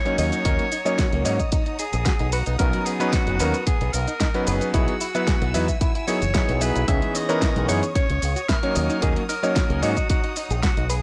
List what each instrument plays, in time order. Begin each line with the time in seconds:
Already playing: string section C#5 C#6 D#6, tenor saxophone C#5
0.05 electric grand piano F#3 A#3 C#4 D#4 C#5, clean electric guitar C#4, closed hi-hat
0.18 fingered electric bass D#2, string section C#5 F#5 A#5 D#6, tenor saxophone C#5, clean electric guitar D#5, open hi-hat, shaker
0.32 clean electric guitar D#4, closed hi-hat, shaker
0.45 fingered electric bass D#2, electric grand piano F#3 A#3 C#4 D#4 A#4, clean electric guitar D#4, kick, closed hi-hat, shaker
0.59 clean electric guitar A#3, closed hi-hat
0.72 clean electric guitar D#4, open hi-hat, shaker
0.85 electric grand piano F#3 A#3 C#4 D#4 C#5, clean electric guitar D#5, closed hi-hat, shaker
0.98 clean electric guitar F#4, kick, snare, closed hi-hat, shaker
1.13 fingered electric bass C#2, clean electric guitar A#3, closed hi-hat
1.24 fingered electric bass G#2, electric grand piano F#3 A#3 C#4 D#4 C#5, clean electric guitar D#5, open hi-hat, shaker
1.39 clean electric guitar D#5, kick, closed hi-hat, shaker
1.52 clean electric guitar D#4, kick, closed hi-hat, shaker
1.66 clean electric guitar D#4, closed hi-hat
1.79 clean electric guitar D#4, tenor saxophone G#4, open hi-hat, shaker
1.93 fingered electric bass A#1, clean electric guitar G#4, closed hi-hat, shaker
2.06 clean electric guitar F#4, kick, snare, closed hi-hat, shaker
2.19 fingered electric bass B1, clean electric guitar D#4, closed hi-hat
2.32 string section B3, tenor saxophone F#4, clean electric guitar B4, open hi-hat, shaker
2.46 fingered electric bass B1, clean electric guitar B3, tenor saxophone D#4, closed hi-hat, shaker
2.59 fingered electric bass B1, electric grand piano F#3 B3 C#4 D#4 A#5, clean electric guitar B3, tenor saxophone A#4, kick, closed hi-hat, shaker
2.73 clean electric guitar F#3, closed hi-hat
2.85 clean electric guitar B3, tenor saxophone G#4, open hi-hat, shaker
3.00 electric grand piano F#3 B3 C#4 D#4 B4, clean electric guitar B4, closed hi-hat, shaker
3.13 clean electric guitar D#4, tenor saxophone F#4, kick, snare, closed hi-hat, shaker
3.27 fingered electric bass F#1, clean electric guitar F#3, closed hi-hat
3.39 fingered electric bass D#2, electric grand piano F#3 B3 C#4 D#4 A#4, clean electric guitar B4, open hi-hat, shaker
3.54 clean electric guitar B4, closed hi-hat, shaker
3.66 clean electric guitar B3, tenor saxophone G#4, muted fingered electric bass stroke, kick, closed hi-hat, shaker
3.81 fingered electric bass B1, clean electric guitar B3, closed hi-hat
3.93 fingered electric bass B1, clean electric guitar B3, tenor saxophone A#4, open hi-hat, shaker
4.07 clean electric guitar D#4, closed hi-hat, shaker
4.20 clean electric guitar D#4, kick, snare, closed hi-hat, shaker
4.34 electric grand piano F#3 B3 C#4 D#4 B4, clean electric guitar B3, closed hi-hat
4.47 fingered electric bass F#1, tenor saxophone G#4, clean electric guitar B4, open hi-hat, shaker
4.61 clean electric guitar B3, closed hi-hat, shaker
4.73 fingered electric bass B1, electric grand piano F#3 B3 D#4 E4 G#4, clean electric guitar E4, tenor saxophone F#4, string section G#5 E6, kick, closed hi-hat, shaker
4.88 clean electric guitar B3, closed hi-hat
5.01 clean electric guitar E4, open hi-hat, shaker
5.15 electric grand piano F#3 B3 E4 B4, clean electric guitar E5, closed hi-hat, shaker
5.27 clean electric guitar G#4, kick, snare, closed hi-hat, shaker
5.42 fingered electric bass B1, clean electric guitar B3, closed hi-hat
5.54 fingered electric bass E2, electric grand piano F#3 B3 D#4 E4 B4, clean electric guitar E5, open hi-hat, shaker
5.68 clean electric guitar E5, kick, closed hi-hat, shaker
5.81 clean electric guitar E4, kick, closed hi-hat, shaker
5.95 clean electric guitar E4, closed hi-hat
6.08 electric grand piano F#3 B3 D#4 E4 G#4, clean electric guitar A#4, tenor saxophone C#5, open hi-hat, shaker
6.22 fingered electric bass F#1, clean electric guitar E3, closed hi-hat, shaker
6.34 electric grand piano F#3 B3 D#4 E4 G#4, clean electric guitar E5, kick, snare, closed hi-hat, shaker
6.49 fingered electric bass B1, clean electric guitar B4, closed hi-hat
6.61 electric grand piano F#3 B3 D#4 E4 G#4, tenor saxophone B4, clean electric guitar E5, open hi-hat, shaker
6.75 fingered electric bass B1, clean electric guitar E4, closed hi-hat, shaker
6.87 fingered electric bass C#2, electric grand piano E3 B3 C#4 D#4 G#4, clean electric guitar C#4, string section C#5 C#6 D#6, tenor saxophone E5, kick, closed hi-hat, shaker
7.02 clean electric guitar G#3, closed hi-hat
7.15 clean electric guitar C#4, tenor saxophone D#5, open hi-hat, shaker
7.29 electric grand piano E3 B3 C#4 D#4 A#4, clean electric guitar C#5, closed hi-hat, shaker
7.42 clean electric guitar E4, kick, snare, closed hi-hat, shaker
7.56 fingered electric bass B1, clean electric guitar G#3, closed hi-hat
7.68 fingered electric bass F#2, electric grand piano E3 B3 C#4 D#4 G#4, clean electric guitar C#5, tenor saxophone C#5, open hi-hat, shaker
7.82 clean electric guitar C#5, closed hi-hat, shaker
7.95 clean electric guitar C#4, tenor saxophone C#5, muted fingered electric bass stroke, kick, closed hi-hat, shaker
8.09 fingered electric bass C#2, clean electric guitar C#4, closed hi-hat
8.22 fingered electric bass C#2, clean electric guitar C#4, open hi-hat, shaker
8.36 clean electric guitar F#4, closed hi-hat, shaker
8.49 clean electric guitar E4, tenor saxophone A#4, kick, snare, closed hi-hat, shaker
8.63 electric grand piano F#3 A#3 C#4 D#4 C#5, clean electric guitar C#4, closed hi-hat
8.75 fingered electric bass D#2, clean electric guitar D#5, string section F#5 A#5, open hi-hat, shaker
8.90 clean electric guitar D#4, closed hi-hat, shaker
9.02 fingered electric bass D#2, electric grand piano F#3 A#3 C#4 D#4 A#4, clean electric guitar D#4, tenor saxophone G#4, kick, closed hi-hat, shaker
9.16 clean electric guitar A#3, closed hi-hat
9.29 clean electric guitar D#4, tenor saxophone A#4, open hi-hat, shaker
9.43 electric grand piano F#3 A#3 C#4 D#4 C#5, clean electric guitar D#5, closed hi-hat, shaker
9.56 clean electric guitar F#4, kick, snare, closed hi-hat, shaker
9.70 fingered electric bass C#2, clean electric guitar A#3, closed hi-hat
9.82 fingered electric bass G#2, electric grand piano F#3 A#3 C#4 D#4 C#5, tenor saxophone F#4, clean electric guitar D#5, open hi-hat, shaker
9.97 clean electric guitar D#5, kick, closed hi-hat, shaker
10.10 clean electric guitar D#4, tenor saxophone F#4, kick, closed hi-hat, shaker
10.24 clean electric guitar D#4, closed hi-hat
10.36 clean electric guitar D#4, tenor saxophone D#4, open hi-hat, shaker
10.50 fingered electric bass A#1, clean electric guitar G#4, closed hi-hat, shaker
10.63 clean electric guitar F#4, tenor saxophone F#4, kick, snare, closed hi-hat, shaker
10.77 fingered electric bass B1, clean electric guitar D#4, closed hi-hat
10.89 string section B3 A#5, tenor saxophone G#4, clean electric guitar B4, open hi-hat, shaker